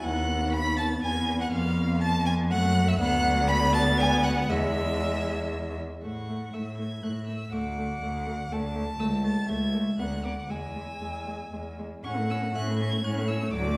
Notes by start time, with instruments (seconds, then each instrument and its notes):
0.02 cello D#2, viola B3, violin F#5 F#6
0.53 violin B5 B6
0.77 violin A5 A6
1.03 cello E2, violin G#5 G#6
1.41 violin F#5 F#6
1.52 cello F2, violin F5 F6
2.01 violin A5 A6
2.26 violin G#5 G#6
2.50 cello F#2, viola A3, violin F#5 F#6
2.88 violin E5 E6
2.99 cello D2, viola B3, violin F#5 F#6
3.48 viola B3, violin B5 B6
3.73 violin A5 A6
3.98 violin G#5 G#6
4.23 violin F#5 F#6
4.49 cello E2, viola G#3, violin E5 E6
6.03 cello A2, viola A3, violin F#5 C#6
6.29 viola A3
6.53 cello A2, viola A3, violin E5 E6
6.78 viola A3, violin G#6
7.03 cello A2, viola A3, violin F#6
7.27 viola A3, violin E6
7.52 cello D2, viola A3, violin F#5 D6
7.78 viola A3
8.02 cello D2, viola A3
8.27 viola A3
8.51 cello D2, viola A3, violin A5
8.75 viola A3
8.99 cello C#2, viola A3, violin E6
9.24 viola A3, violin A6
9.49 cello C#2, viola A3, violin E5 G#6
9.74 viola A3
9.99 cello D2, viola B3, violin F#5 F#6
10.24 viola B3, violin D6
10.49 cello E2, viola G#3, violin G#5 E6
10.75 viola G#3
11.01 cello E2, viola G#3
11.27 viola G#3
11.53 cello E2, viola G#3
11.79 viola G#3
12.04 cello A2, viola C#4, violin F#5 C#6
12.18 viola A3
12.30 viola C#4, violin E6
12.43 viola A3
12.55 cello A2, viola C#4, violin E5 F#6
12.68 viola A3
12.79 viola C#4, violin G#6
12.93 viola A3
13.04 cello A2, viola C#4, violin C#5 F#6
13.18 viola A3
13.28 viola C#4, violin E6
13.43 viola A3
13.53 cello D2, viola F#3, violin D5 D6
13.67 viola A3